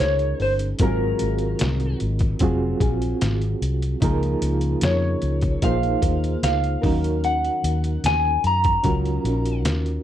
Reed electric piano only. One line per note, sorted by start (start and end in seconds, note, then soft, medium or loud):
0.00 0.64 C#4 medium
0.00 0.65 D#4 medium
0.00 0.65 G#4 medium
0.00 0.65 A#4 medium
0.80 2.26 C4 medium
0.80 2.26 F4 medium
0.80 2.26 F#4 medium
0.80 2.27 A#4 medium
2.41 3.87 C4 medium
2.41 3.88 F4 medium
2.41 3.88 F#4 medium
2.41 3.88 G#4 medium
4.02 5.48 D#4 medium
4.02 5.48 F4 medium
4.02 5.49 G#4 medium
4.02 5.49 A#4 loud
5.62 6.83 D#4 medium
5.62 6.84 F4 medium
5.62 6.84 G#4 medium
5.62 6.85 C5 medium
6.83 8.29 C#4 medium
6.83 8.30 D#4 medium
6.83 8.30 F#4 medium
6.83 8.31 A#4 medium
8.83 10.03 C#4 medium
8.83 10.03 F4 medium
8.83 10.03 F#4 medium
8.83 10.03 A#4 medium